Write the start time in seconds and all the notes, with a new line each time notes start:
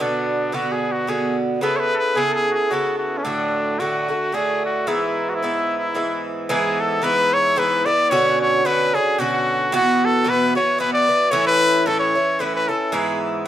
0.00 B2 D3 B3 D4 F#4
0.52 B2 D3 B3 F#4
0.72 G#4
0.92 F#4
1.07 B2 D3 B3 F#4 G#4
1.61 C#3 B3 E4 A4 B4
1.76 B4 C#5
1.94 A4 B4
2.15 C#3 B3 E4 G#4 A4
2.31 G#4 A4
2.51 F#4 G#4
2.70 C#3 B3 E4 F#4 A4
2.98 F#4
3.17 C#4
3.24 A2 D3 A3 D4 F#4
3.79 A2 D3 A3 F#4
4.08 D3 A3 F#4
4.32 A2 D3 A3 F#4 G#4
4.65 F#4
4.87 G#2 E3 B3 E4
5.29 F#4
5.35 E4
5.42 G#2 E3 B3 E4
5.77 E4
5.95 G#2 E3 B3 E4
6.49 G#2 E3 B3 E4 G#4
6.80 A4
7.02 G#2 E3 B3 E4 B4
7.33 C#5
7.56 G#2 E3 B3 E4 B4
7.86 E3 B3 E4 D5
8.10 B2 D3 C#4 F#4 C#5
8.41 C#5
8.65 B2 D3 C#4 F#4 B4
8.94 D3 C#4 F#4 G#4
9.18 B2 D3 C#4 F#4
9.72 B2 E3 B3 F#4
10.05 A4
10.24 B2 E3 B3 F#4
10.29 B4
10.55 E3 B3 F#4 C#5
10.78 B2 E3 B3 F#4 B4
10.93 D5
11.08 E3 B3 F#4
11.31 A2 E3 C#4 E4 C#5
11.47 B4
11.86 A2 E3 C#4 E4 A4
12.00 C#5
12.15 E3 C#4 E4
12.39 A2 E3 C#4 E4 B4
12.46 B4
12.56 B4
12.68 E3 C#4 E4 A4
12.92 G#2 E3 B3 E4 G#4